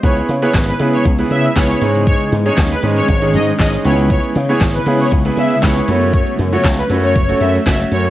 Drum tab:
HH |xxoxxxoxxxoxxxox|xxoxxxoxxxoxxxox|xxoxxxoxxxoxxxox|xxoxxxoxxxoxxxox|
SH |xxxxxxxxxxxxxxxx|xxxxxxxxxxxxxxxx|xxxxxxxxxxxxxxxx|xxxxxxxxxxxxxxxx|
CP |----x-------x---|----x-------x---|----x-------x---|----x-------x---|
SD |----o-------o---|----o-------o---|----o-------o---|----o-------o---|
BD |o---o---o---o---|o---o---o---o---|o---o---o---o---|o---o---o---o---|